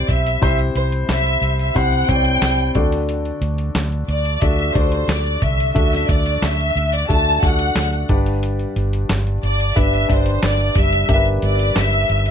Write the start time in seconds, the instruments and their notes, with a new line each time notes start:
Already playing: grand piano C4 E4 G4 C5
0.09 fingered electric bass B1, violin section E5, kick, closed hi-hat
0.27 closed hi-hat
0.42 fingered electric bass C2, grand piano C3 C4 E4 G4 C5, violin section E5, kick, closed hi-hat
0.59 closed hi-hat
0.75 fingered electric bass C2, violin section C5, closed hi-hat
0.92 closed hi-hat
1.09 fingered electric bass C2, violin section E5, snare, clap, closed hi-hat
1.26 closed hi-hat
1.41 fingered electric bass C2, closed hi-hat
1.59 violin section E5, closed hi-hat
1.75 fingered electric bass C2, grand piano C4 E4 G4 C5, violin section F#5, kick, closed hi-hat
1.92 closed hi-hat
2.08 fingered electric bass C2, grand piano C4 E4 G4 C#5, violin section G5, kick, closed hi-hat
2.15 grand piano D5
2.25 closed hi-hat
2.41 fingered electric bass C2, snare, clap, closed hi-hat
2.59 closed hi-hat
2.75 fingered electric bass D2, grand piano D3 D4 F#4 A4 D5, kick, closed hi-hat
2.92 closed hi-hat
3.09 closed hi-hat
3.25 closed hi-hat
3.41 fingered electric bass D2, closed hi-hat
3.58 closed hi-hat
3.75 fingered electric bass D2, snare, clap, closed hi-hat
3.92 closed hi-hat
4.08 fingered electric bass D2, violin section D5, closed hi-hat
4.25 closed hi-hat
4.42 fingered electric bass D2, grand piano D4 F#4 A4 D5, violin section E5, kick, closed hi-hat
4.59 closed hi-hat
4.75 fingered electric bass D2, grand piano D4 F#4 A4 D5, violin section C5, kick, closed hi-hat
4.92 closed hi-hat
5.08 fingered electric bass D2, violin section D5, snare, clap, closed hi-hat
5.26 closed hi-hat
5.41 fingered electric bass C2, grand piano D3, violin section E5, kick, closed hi-hat
5.60 closed hi-hat
5.74 fingered electric bass D2, grand piano D4 F#4 A4 E5, violin section E5, kick, closed hi-hat
5.93 snare, closed hi-hat
6.09 fingered electric bass D2, violin section D5, kick, closed hi-hat
6.26 closed hi-hat
6.42 fingered electric bass D2, violin section E5, snare, clap, closed hi-hat
6.60 closed hi-hat
6.76 fingered electric bass D2, closed hi-hat
6.93 violin section D5, closed hi-hat
7.08 fingered electric bass D2, grand piano D4 F#4 A4 E5, violin section A5, kick, closed hi-hat
7.42 fingered electric bass D2, grand piano D4 F#4 A4 D5, violin section F#5, kick, closed hi-hat
7.59 closed hi-hat
7.76 fingered electric bass D2, snare, clap, closed hi-hat
7.93 closed hi-hat
8.09 fingered electric bass G1, grand piano G2 D4 G4 B4 D5, kick, closed hi-hat
8.26 closed hi-hat
8.43 closed hi-hat
8.59 closed hi-hat
8.76 fingered electric bass G1, closed hi-hat
8.93 closed hi-hat
9.09 fingered electric bass G1, snare, clap, closed hi-hat
9.27 closed hi-hat
9.43 fingered electric bass G1, violin section D5, closed hi-hat
9.60 closed hi-hat
9.76 fingered electric bass G1, grand piano D4 G4 B4 E5, violin section E5, kick, closed hi-hat
9.94 closed hi-hat
10.08 fingered electric bass G1, grand piano D4 G4 D5, kick, closed hi-hat
10.13 violin section C5
10.26 closed hi-hat
10.43 fingered electric bass G1, violin section D5, snare, clap, closed hi-hat
10.59 closed hi-hat
10.75 fingered electric bass F#1, grand piano G3, violin section E5, kick, closed hi-hat
10.93 closed hi-hat
11.08 fingered electric bass G1, grand piano D4 G4 A#4 E5, kick, closed hi-hat
11.12 grand piano B4, violin section E5
11.25 closed hi-hat
11.42 fingered electric bass G1, violin section D5, closed hi-hat
11.59 closed hi-hat
11.76 fingered electric bass G1, violin section E5, snare, clap, closed hi-hat
11.93 closed hi-hat
12.09 fingered electric bass G1, closed hi-hat
12.26 closed hi-hat